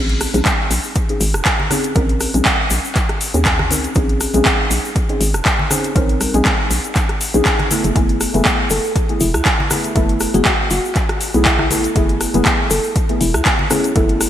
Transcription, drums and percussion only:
0.09 closed hi-hat
0.21 cross-stick, open hi-hat, shaker
0.34 closed hi-hat, high conga, shaker
0.45 kick, clap, closed hi-hat, shaker
0.71 open hi-hat, shaker
0.84 shaker
0.95 kick, closed hi-hat, shaker
1.09 closed hi-hat
1.21 open hi-hat, shaker
1.34 cross-stick, closed hi-hat, shaker
1.45 kick, clap, closed hi-hat, shaker
1.60 low conga
1.71 cross-stick, open hi-hat, low conga, shaker
1.84 closed hi-hat, shaker
1.95 kick, closed hi-hat, shaker
2.09 closed hi-hat
2.20 cross-stick, open hi-hat, shaker
2.34 closed hi-hat, high conga, shaker
2.45 kick, clap, closed hi-hat, shaker
2.70 open hi-hat, shaker
2.85 shaker
2.95 kick, clap, closed hi-hat, shaker
3.09 cross-stick, closed hi-hat
3.21 open hi-hat, shaker
3.34 closed hi-hat, shaker
3.45 kick, clap, closed hi-hat, shaker
3.59 cross-stick, low conga
3.71 open hi-hat, low conga, shaker
3.84 closed hi-hat, shaker
3.95 kick, closed hi-hat, shaker
4.09 closed hi-hat
4.20 cross-stick, open hi-hat, shaker
4.34 closed hi-hat, high conga, shaker
4.45 kick, clap, closed hi-hat, shaker
4.71 open hi-hat, shaker
4.85 shaker
4.95 kick, closed hi-hat, shaker
5.09 closed hi-hat
5.21 open hi-hat, shaker
5.34 cross-stick, closed hi-hat, shaker
5.45 kick, clap, closed hi-hat, shaker
5.59 low conga
5.71 cross-stick, open hi-hat, low conga, shaker
5.84 closed hi-hat, shaker
5.96 kick, closed hi-hat, shaker
6.09 closed hi-hat
6.21 cross-stick, open hi-hat, high conga, shaker
6.34 closed hi-hat, high conga, shaker
6.45 kick, clap, closed hi-hat, shaker
6.71 open hi-hat, shaker
6.84 closed hi-hat, shaker
6.95 kick, clap, closed hi-hat, shaker
7.09 cross-stick, closed hi-hat
7.21 open hi-hat, shaker
7.34 closed hi-hat, shaker
7.45 kick, clap, closed hi-hat, shaker
7.59 cross-stick, closed hi-hat, low conga
7.71 open hi-hat, low conga, shaker
7.84 closed hi-hat, shaker
7.96 kick, closed hi-hat, shaker
8.09 closed hi-hat
8.21 cross-stick, open hi-hat, shaker
8.34 closed hi-hat, high conga, shaker
8.45 kick, clap, closed hi-hat, shaker
8.70 open hi-hat, shaker
8.84 shaker
8.96 kick, closed hi-hat, shaker
9.09 closed hi-hat
9.20 open hi-hat, shaker
9.34 cross-stick, closed hi-hat, shaker
9.45 kick, clap, closed hi-hat, shaker
9.60 low conga
9.71 cross-stick, open hi-hat, low conga, shaker
9.84 closed hi-hat, shaker
9.96 kick, closed hi-hat, shaker
10.09 closed hi-hat
10.20 cross-stick, open hi-hat, shaker
10.34 closed hi-hat, high conga, shaker
10.45 kick, clap, closed hi-hat, shaker
10.71 open hi-hat, shaker
10.85 shaker
10.95 kick, clap, closed hi-hat, shaker
11.09 cross-stick, closed hi-hat
11.21 open hi-hat, shaker
11.34 closed hi-hat, shaker
11.45 kick, clap, closed hi-hat, shaker
11.59 cross-stick, low conga
11.70 open hi-hat, low conga, shaker
11.84 closed hi-hat, shaker
11.96 kick, closed hi-hat, shaker
12.09 closed hi-hat
12.21 cross-stick, open hi-hat, shaker
12.34 closed hi-hat, high conga, shaker
12.45 kick, clap, closed hi-hat, shaker
12.70 open hi-hat, shaker
12.84 shaker
12.96 kick, closed hi-hat, shaker
13.09 closed hi-hat
13.21 open hi-hat, shaker
13.34 cross-stick, closed hi-hat, shaker
13.45 kick, clap, closed hi-hat, shaker
13.59 low conga
13.70 cross-stick, open hi-hat, low conga, shaker
13.84 closed hi-hat, shaker
13.96 kick, closed hi-hat, shaker
14.09 closed hi-hat
14.21 cross-stick, open hi-hat, shaker

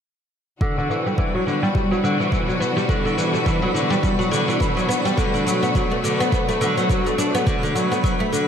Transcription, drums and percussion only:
0.61 kick, shaker
0.79 shaker
0.91 shaker
1.07 shaker
1.18 kick, shaker
1.48 shaker
1.64 shaker
1.75 kick, shaker
1.93 shaker
2.05 shaker
2.21 shaker
2.32 kick, shaker
2.49 shaker
2.62 shaker
2.78 shaker
2.89 kick, shaker
3.07 shaker
3.18 shaker
3.35 shaker
3.46 kick, shaker
3.76 shaker
3.92 shaker
4.03 kick, shaker
4.21 shaker
4.33 shaker
4.49 shaker
4.61 kick, shaker
4.78 shaker
4.91 shaker
5.07 shaker
5.18 kick, shaker
5.35 shaker
5.48 shaker
5.64 shaker
5.75 kick, shaker
6.05 shaker
6.21 shaker
6.32 kick, shaker
6.50 shaker
6.62 shaker
6.78 shaker
6.90 kick, shaker
7.07 shaker
7.19 shaker
7.36 shaker
7.47 kick, shaker
7.64 shaker
7.76 shaker
7.93 shaker
8.04 kick, shaker
8.34 shaker

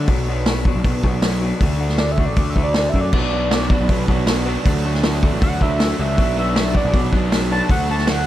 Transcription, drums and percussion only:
0.08 kick, open hi-hat
0.46 snare, open hi-hat
0.65 kick
0.84 kick, open hi-hat
1.03 kick
1.22 snare, open hi-hat
1.61 kick, open hi-hat
1.89 snare
1.98 snare, open hi-hat
2.18 kick
2.36 kick, open hi-hat
2.56 kick
2.74 snare, open hi-hat
2.94 kick
3.13 kick, crash
3.51 snare, open hi-hat
3.70 kick
3.89 kick, open hi-hat
4.08 kick
4.27 snare, open hi-hat
4.65 kick, open hi-hat
4.94 snare
5.03 snare, open hi-hat
5.23 kick
5.42 kick, open hi-hat
5.61 kick
5.80 snare, open hi-hat
6.18 kick, open hi-hat
6.56 snare, open hi-hat
6.75 kick
6.94 kick, open hi-hat
7.13 kick
7.32 snare, open hi-hat
7.69 kick, open hi-hat
7.98 snare
8.07 snare, open hi-hat

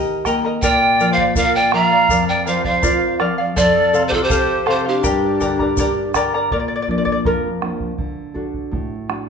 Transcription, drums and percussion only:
0.25 bombo rim, bombo low, shaker
0.62 bombo low, shaker
1.00 shaker
1.17 bombo low
1.35 bombo low, shaker
1.72 bombo rim
2.09 bombo low, shaker
2.47 shaker
2.64 bombo low
2.83 bombo low, shaker
3.20 bombo rim
3.57 bombo low, shaker
3.94 shaker
4.12 bombo low
4.30 bombo low, shaker
4.67 bombo rim
5.04 bombo low, shaker
5.41 bombo low, shaker
5.59 bombo low
5.77 bombo low, shaker
6.14 bombo rim, bombo low, shaker
6.51 bombo low
6.88 bombo low
7.07 bombo low
7.25 bombo low
7.62 bombo rim
7.80 bombo low
7.98 bombo low
8.36 bombo low
8.54 bombo low
8.73 bombo low
9.10 bombo rim

